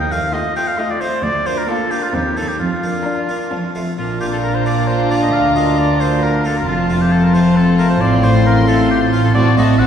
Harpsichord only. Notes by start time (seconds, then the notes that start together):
Already playing: D#2
0.11 A3 C4 F4
0.56 A3 C4 F4
1.01 A3 C4 F4
1.23 D2
1.46 A#3 D4 F4
1.91 A#3 D4 F4
2.14 D#2
2.37 A#3 C4 D#4
2.60 F2
2.83 A#3 D4
3.29 A#3 D4
3.52 F2
3.75 A3 C4 F4
3.98 A#2
4.21 A#3 D4 F4
4.66 A#3 D4 F4
5.11 A#3 D4 F4
5.33 D2
5.56 A#3 D4 F4
6.00 A#3 D4 F4
6.44 A#3 D4 F4
6.67 F2
6.90 A3 C4 F4
7.34 A3 C4 F4
7.79 A3 C4 F4
8.01 A2
8.23 A3 C4 F4
8.68 A3 C4 F4
9.13 A3 C4 F4
9.35 A2
9.58 A2 A3 C4 F#4
9.80 A2